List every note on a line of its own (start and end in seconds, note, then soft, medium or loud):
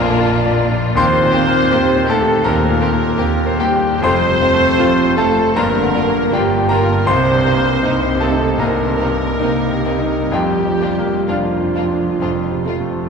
0.00 0.92 A#1 medium
0.00 0.97 A#1 medium
0.00 0.12 F2 medium
0.00 0.96 A#2 medium
0.00 0.21 A#3 medium
0.00 0.36 A#3 medium
0.00 0.95 A#3 medium
0.00 0.97 D4 medium
0.00 0.94 F4 medium
0.00 0.19 A#4 medium
0.00 0.21 A#4 medium
0.00 0.18 A#5 medium
0.20 0.60 F4 medium
0.46 0.86 D5 medium
0.70 0.96 F4 medium
0.95 2.40 D#2 medium
0.95 1.63 D#2 medium
0.95 1.05 A#3 medium
0.95 1.05 C4 medium
0.95 2.05 C4 medium
0.95 1.05 G4 medium
0.95 2.04 C5 medium
0.95 1.94 C5 medium
0.95 2.05 C6 medium
1.22 1.62 A#2 medium
1.32 1.43 A#3 medium
1.32 1.43 C4 medium
1.32 1.40 G4 medium
1.47 1.86 A#3 medium
1.71 2.37 D#2 medium
1.71 1.80 A#3 medium
1.71 1.80 C4 medium
1.71 2.11 G4 medium
1.71 1.80 G4 medium
1.96 2.35 C5 soft
2.07 2.45 A3 medium
2.07 2.16 A#3 medium
2.07 2.16 C4 medium
2.07 2.15 G4 medium
2.07 2.45 A4 medium
2.07 2.44 A4 medium
2.07 2.43 A5 medium
2.21 2.59 G4 medium
2.43 3.99 D#2 medium
2.43 3.10 D#2 medium
2.43 3.59 A#3 medium
2.43 2.54 A#3 medium
2.43 2.54 C4 medium
2.43 2.52 G4 medium
2.43 3.60 A#4 medium
2.43 3.57 A#4 medium
2.43 3.56 A#5 medium
2.69 3.08 A#2 medium
2.81 2.89 A#3 medium
2.81 2.89 C4 medium
2.81 2.89 G4 soft
2.93 3.35 A#3 soft
3.18 3.93 D#2 medium
3.18 3.26 A#3 soft
3.18 3.26 C4 medium
3.18 3.61 G4 medium
3.18 3.27 G4 soft
3.47 3.92 C5 medium
3.59 4.02 G3 medium
3.59 3.67 A#3 soft
3.59 3.67 C4 medium
3.59 3.68 G4 soft
3.59 4.02 G4 medium
3.59 3.75 G4 medium
3.59 4.00 G5 medium
3.76 4.03 G4 soft
4.01 4.70 F1 medium
4.01 5.53 F2 medium
4.01 4.70 F2 medium
4.01 4.12 A3 medium
4.01 5.15 C4 medium
4.01 4.11 C4 medium
4.01 4.12 F4 medium
4.01 5.16 C5 medium
4.01 5.03 C5 medium
4.01 5.14 C6 medium
4.30 4.69 C3 soft
4.41 4.49 A3 soft
4.41 4.49 C4 medium
4.41 4.49 F4 medium
4.54 4.94 A3 medium
4.78 5.47 F1 medium
4.78 5.47 F2 medium
4.78 4.87 A3 medium
4.78 4.87 C4 soft
4.78 4.86 F4 medium
4.78 5.20 F4 medium
5.04 5.46 C5 soft
5.17 5.25 A3 soft
5.17 5.57 A3 medium
5.17 5.25 C4 soft
5.17 5.25 F4 soft
5.17 5.55 A4 medium
5.17 5.54 A4 medium
5.17 5.54 A5 medium
5.30 5.56 F4 soft
5.56 6.24 G1 medium
5.56 7.04 G2 medium
5.56 6.25 G2 medium
5.56 5.65 A#3 medium
5.56 6.34 A#3 medium
5.56 5.65 D4 medium
5.56 5.65 F4 medium
5.56 6.33 A#4 medium
5.56 6.30 A#4 medium
5.56 6.29 A#5 medium
5.82 6.23 D3 soft
5.95 6.03 A#3 soft
5.95 6.03 D4 soft
5.95 6.03 F4 soft
6.09 6.49 A#3 soft
6.32 6.99 G1 medium
6.32 6.99 G2 medium
6.32 6.71 G3 medium
6.32 6.41 A#3 soft
6.32 6.41 D4 soft
6.32 6.73 F4 medium
6.32 6.42 F4 soft
6.32 6.70 G4 medium
6.32 6.56 G4 soft
6.32 6.68 G5 medium
6.58 6.98 G4 soft
6.69 6.78 A#3 medium
6.69 7.07 A#3 medium
6.69 6.78 D4 medium
6.69 6.79 F4 soft
6.69 7.05 A#4 medium
6.69 7.07 A#4 medium
6.69 7.04 A#5 medium
6.81 7.07 F4 soft
7.06 8.55 C2 medium
7.06 7.74 C2 medium
7.06 7.74 C3 medium
7.06 7.15 A#3 medium
7.06 7.15 C4 medium
7.06 8.21 C4 medium
7.06 7.16 D#4 medium
7.06 8.20 C5 medium
7.06 8.17 C5 medium
7.06 8.17 C6 medium
7.32 7.73 G2 soft
7.45 7.53 A#3 soft
7.45 7.53 C4 soft
7.45 7.54 D#4 soft
7.56 7.97 A#3 soft
7.83 8.51 C2 medium
7.83 8.51 C3 medium
7.83 7.92 A#3 soft
7.83 7.92 C4 medium
7.83 8.24 D#4 soft
7.83 7.93 D#4 soft
8.09 8.50 G4 soft
8.21 8.60 A3 medium
8.21 8.29 A#3 soft
8.21 8.30 C4 soft
8.21 8.29 D#4 soft
8.21 8.60 A4 medium
8.21 8.58 A4 medium
8.21 8.57 A5 medium
8.33 8.75 D#4 soft
8.58 10.28 C2 soft
8.58 9.32 C2 medium
8.58 9.32 C3 medium
8.58 10.16 A#3 medium
8.58 8.69 A#3 soft
8.58 8.69 C4 soft
8.58 8.68 D#4 soft
8.58 10.33 A#4 medium
8.58 10.30 A#4 soft
8.58 10.29 A#5 medium
8.83 9.29 G2 soft
9.00 9.09 A#3 soft
9.00 9.09 C4 soft
9.00 9.08 D#4 soft
9.11 9.58 A#3 soft
9.40 10.22 C2 medium
9.40 10.22 C3 medium
9.40 9.51 A#3 soft
9.40 9.50 C4 soft
9.40 9.88 D#4 soft
9.40 9.50 D#4 soft
9.69 10.19 G4 soft
9.85 9.93 A#3 soft
9.85 9.93 C4 soft
9.85 9.93 D#4 soft
9.99 10.32 D#4 soft
10.31 11.18 F1 medium
10.31 12.17 F2 medium
10.31 11.18 F2 soft
10.31 11.28 G3 medium
10.31 10.39 A#3 soft
10.31 10.40 D4 soft
10.31 10.39 F4 soft
10.31 11.30 G4 medium
10.31 11.26 G4 medium
10.31 11.26 G5 medium
10.66 11.17 F3 soft
10.80 10.88 A#3 soft
10.80 10.89 D4 soft
10.80 10.90 F4 soft
10.98 11.49 A#3 soft
11.28 12.11 F1 medium
11.28 12.11 F2 soft
11.28 13.09 F3 soft
11.28 11.36 A#3 soft
11.28 11.36 D4 soft
11.28 11.80 D4 soft
11.28 11.36 F4 soft
11.28 13.09 F4 soft
11.28 11.59 F4 soft
11.28 13.09 F5 soft
11.61 12.10 F4 soft
11.75 11.83 A#3 soft
11.75 11.83 D4 soft
11.75 11.84 F4 soft
11.91 12.22 D4 soft
12.20 13.01 F1 soft
12.20 13.09 F2 soft
12.20 13.01 F2 soft
12.20 12.28 A3 soft
12.20 12.28 C4 soft
12.20 12.30 F4 soft
12.51 13.00 C3 soft
12.65 12.73 A3 soft
12.65 12.73 C4 soft
12.65 12.76 F4 soft
12.81 13.09 A3 soft